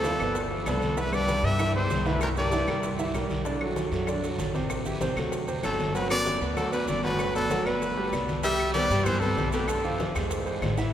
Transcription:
Already playing: C2 D2 A4
0.03 F3 F4 F5, high bongo, high conga, short guiro, maracas
0.19 G1 B3 B4 D5, high bongo, high conga, short guiro, claves, maracas
0.34 high bongo, high conga, long guiro, maracas
0.51 F3 F4 F5, high bongo, high conga
0.66 C2 D2 B3 A4 B4 D5, high bongo, low bongo, high conga, short guiro, claves, maracas
0.82 high bongo, high conga, short guiro, maracas
0.97 E2 E3 E4 B4 E5, high bongo, long guiro, maracas
1.12 G2 G3 G4 B4 D5, high conga, claves, maracas
1.28 high bongo, high conga, short guiro, maracas
1.43 G2 G3 G4 B4 E5, high conga, short guiro, maracas
1.59 E3 E4 E5, high bongo, high conga, long guiro, claves, maracas
1.75 E2 G3 G4 C5, high bongo, high conga
1.89 C2, high bongo, low bongo, high conga, short guiro, maracas
2.06 D2 E3 E4 B4 E5, high bongo, high conga, short guiro, maracas
2.21 D2 A#4, high bongo, high conga, long guiro, claves, maracas
2.37 G2 G3 G4 A#4 D5, high conga, maracas
2.52 E3 E4 E5, high bongo, high conga, short guiro, maracas
2.67 G2 G3 G4 A#4, high bongo, high conga, short guiro, claves, maracas
2.83 high bongo, high conga, long guiro, maracas
2.98 E3 E4 E5, high bongo, high conga, maracas
3.14 B1 G3 G4 A#4, high bongo, low bongo, short guiro, claves, maracas
3.29 high bongo, high conga, short guiro, maracas
3.45 D3 D4 D5, high bongo, high conga, long guiro, maracas
3.61 F#3 F#4 A4, high conga, claves
3.76 high bongo, high conga, short guiro, maracas
3.91 F#2 F#3 F#4 A4, high bongo, high conga, short guiro, maracas
4.07 D3 D4 D5, high bongo, high conga, long guiro, claves, maracas
4.23 F#3 F#4 A4, high bongo, high conga, maracas
4.38 A1, high bongo, low bongo, high conga, short guiro, maracas
4.54 C3 C4 C5, high bongo, high conga, short guiro, maracas
4.70 high bongo, long guiro, claves, maracas
4.85 E3 E4 G4, high conga, maracas
5.01 C3 C4 C5, high bongo, high conga, short guiro, maracas
5.16 D2 F#3 F#4 A4, high bongo, high conga, short guiro, claves, maracas
5.32 high bongo, high conga, long guiro, maracas
5.48 C3 C4 C5, high bongo, high conga, maracas
5.63 G1 C2 F#3 F#4 A4, high bongo, low bongo, high conga, short guiro, claves, maracas
5.79 high bongo, high conga, short guiro, maracas
5.95 D2 F#3 F#4 B4 F#5, high bongo, high conga, long guiro, maracas
6.10 F#2 B3 B4 D5, high conga, claves, maracas
6.26 high bongo, high conga, short guiro, maracas
6.41 D2 B3 B4 D5, high bongo, high conga, short guiro, maracas
6.56 D2 F#3 F#4 A4 F#5, high bongo, high conga, long guiro, claves, maracas
6.72 D2 B3 B4 D5, high conga, maracas
6.87 G1 F#2 D5, high bongo, low bongo, high conga, short guiro, maracas
7.03 D2 F#3 F#4 B4 F#5, high bongo, high conga, short guiro, maracas
7.19 high bongo, high conga, long guiro, claves, maracas
7.35 D2 B3 A4 B4 D5, high conga, maracas
7.50 F#3 F#4 F#5, high bongo, high conga, short guiro, maracas
7.66 G1 D2 B3 B4 D5, high bongo, high conga, short guiro, claves, maracas
7.82 high bongo, high conga, long guiro, maracas
7.97 G3 G4 G5, high bongo, high conga
8.12 C2 B3 B4 D5, high bongo, low bongo, high conga, short guiro, claves, maracas
8.28 high bongo, high conga, short guiro, maracas
8.43 G3 G4 E5 G5, high bongo, high conga, long guiro, maracas
8.59 high conga, claves, maracas
8.74 G3 B3 B4 C5 D5, high bongo, high conga, short guiro, maracas
8.90 G2 G3 G4 G5, high bongo, high conga, short guiro, maracas
9.04 E3 B3 B4 C5, high bongo, high conga, low conga, long guiro, claves, maracas
9.19 C3 C4 A4 B4 C5, high bongo, high conga, low conga, maracas
9.37 B1, high bongo, low bongo, high conga, short guiro, maracas
9.52 B2 A3 G4 A4 B4, high bongo, short guiro, maracas
9.68 D3 A4, high bongo, high conga, long guiro, claves, maracas
9.84 F3 F4 F5, high conga, maracas
10.00 high bongo, high conga, short guiro, maracas
10.15 E2 G#3 G#4 C5, high bongo, short guiro, claves, maracas
10.31 high bongo, high conga, long guiro, maracas
10.46 G#3 G#4 C5, high bongo, high conga, maracas
10.62 A1, high bongo, low bongo, high conga, short guiro, claves, maracas
10.77 E3 E4 E5, high bongo, short guiro, maracas

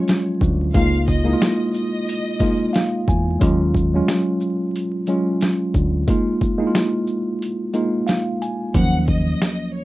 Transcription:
Already playing: F3 F#3 G#3 C#4 F4 C#5
0.08 snare, closed hi-hat
0.41 D2, kick, shaker
0.73 C#2 G#3 A#3 D#4 F4 F5, kick, closed hi-hat
1.08 D#5, kick, shaker
1.24 G#3 A#3 D#4 E4
1.33 F4
1.42 snare, closed hi-hat
1.73 D#5, shaker
2.09 closed hi-hat
2.40 G#3 A#3 D#4 F4, kick, closed hi-hat, shaker
2.73 F5, snare, closed hi-hat
3.08 E2 G#5, kick, shaker
3.40 D#2 F#3 G#3 C#4 F4, kick, closed hi-hat
3.75 kick, shaker
3.94 F#3 G#3 C#4 F4
4.08 snare, closed hi-hat
4.40 shaker
4.76 closed hi-hat
5.07 F#3 G#3 C#4 F4, closed hi-hat, shaker
5.41 snare, closed hi-hat
5.74 D2, kick, shaker
6.07 G#3 A#3 D#4 F4, kick, closed hi-hat
6.41 kick, shaker
6.58 G#3 A#3 D#4 E4
6.67 F4
6.75 snare, closed hi-hat
7.07 shaker
7.42 closed hi-hat
7.73 G#3 A#3 D#4 F4, closed hi-hat, shaker
8.07 F5, snare, closed hi-hat
8.42 G#5, closed hi-hat, shaker
8.74 D#2 F3 F#3 A#3 C#4 F#5, kick, closed hi-hat
9.08 D#5, kick
9.42 snare, closed hi-hat
9.74 C#5

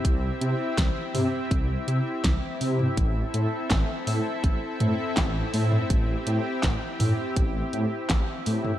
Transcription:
Already playing: C4 E4 G4 E5
0.05 C2, kick, closed hi-hat
0.41 C3, closed hi-hat
0.78 C2, kick, snare, closed hi-hat
1.14 C3, mid tom, open hi-hat
1.51 C2, kick, closed hi-hat
1.88 C3, closed hi-hat
2.24 C2, kick, snare, closed hi-hat
2.61 C3, open hi-hat
2.79 mid tom
2.97 A1 C4 A4, kick, closed hi-hat
3.34 A2, closed hi-hat
3.71 A1, kick, snare, clap, closed hi-hat
4.07 A2, open hi-hat
4.44 A1, kick, closed hi-hat
4.80 A2, closed hi-hat, mid tom
5.17 A1, kick, snare, clap, closed hi-hat
5.54 A2, open hi-hat
5.72 mid tom
5.90 A1 G4, kick, closed hi-hat
6.27 A2, closed hi-hat
6.63 A1, kick, snare, clap, closed hi-hat
7.00 A2, mid tom, open hi-hat
7.36 A1, kick, closed hi-hat
7.73 A2, closed hi-hat
8.10 A1, kick, snare, clap, closed hi-hat
8.46 A2, open hi-hat
8.65 mid tom

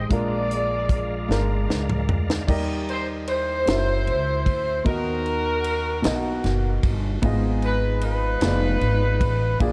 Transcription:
Already playing: G#3 D#4 G4 A4 A#4
0.09 A#1 A#2 G#3 D4 F4 A#4 D5 F5 A#5, kick, closed hi-hat
0.13 F4 G#4 D5
0.51 closed hi-hat
0.89 kick, closed hi-hat
1.28 G1 G#3 D4 F4 A#4, snare
1.68 C#2, snare
1.90 mid tom
2.08 D2, floor tom
2.30 snare
2.47 D#2 G3 D#4 G4 A#4 D5 D#5, kick, crash
2.89 C5, ride
3.27 E4 C5, ride
3.65 F#1 C#4 E4 F#4 A#4 E5, snare, ride
4.07 C#2, ride
4.46 D2, kick, ride
4.84 D#2 D#3 B3 D#4 F#4 A#4 D#5, kick, ride
4.89 F#4
5.26 ride
5.64 ride
6.02 B1 B2 D#4 F#4 A#4 D#5, snare, ride
6.06 A#3 B3
6.44 F#1, snare, ride
6.83 G1, kick, ride
7.22 G#1 G#2 B3 D#4 F4 G#4 D#5, kick, ride
7.62 B4, ride
8.01 D#4 F4 B4, ride
8.41 F1 B3 D#4 F4 G#4 D5, snare, ride
8.81 G#1, ride
9.20 A1, kick, ride
9.60 A#1 A#2 A#3 D4 F4 G#4 D5, kick, ride

